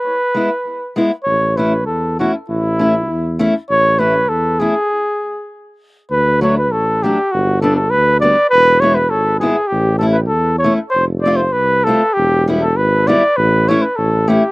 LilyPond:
<<
  \new Staff \with { instrumentName = "Flugelhorn" } { \time 2/4 \key a \major \tempo 4 = 99 b'4. r8 | cis''8 b'8 a'8 fis'8 | e'4. r8 | cis''8 b'8 a'8 gis'8~ |
gis'4 r4 | \key e \dorian b'8 cis''16 b'16 a'8 g'8 | fis'8 a'16 a'16 b'8 d''8 | b'8 cis''16 b'16 a'8 gis'8 |
g'8 a'16 b'16 a'8 cis''8 | c''8 d''16 c''16 b'8 a'8 | g'8 r16 a'16 b'8 d''8 | b'8 cis''16 b'16 a'8 g'8 | }
  \new Staff \with { instrumentName = "Steel-string acoustic guitar" } { \time 2/4 \key a \major r8 <gis b e'>8 r8 <gis b e'>8 | r8 <a cis' e'>8 r8 <a cis' e'>8 | r8 <a cis' e'>8 r8 <a cis' e'>8 | r8 <a cis' e'>8 r8 <a cis' e'>8 |
r2 | \key e \dorian r8 <fis a d'>8 r8 <fis a d'>8 | r8 <g b d'>8 r8 <g b d'>8 | r8 <gis b e'>8 r8 <gis b e'>8 |
r8 <a cis' e'>8 r8 <a cis' e'>8 | r8 <a c' f'>8 r8 <a c' f'>8 | r8 <g b e'>8 r8 <g b e'>8 | r8 <a cis' e'>8 r8 <a cis' e'>8 | }
  \new Staff \with { instrumentName = "Tuba" } { \clef bass \time 2/4 \key a \major r2 | a,,4 e,4 | a,,4 e,4 | a,,4 e,4 |
r2 | \key e \dorian d,4 a,,4 | g,,4 d,4 | e,,4 gis,,4 |
a,,4 e,4 | f,,4 c,4 | e,,4 gis,,4 | a,,4 a,,4 | }
>>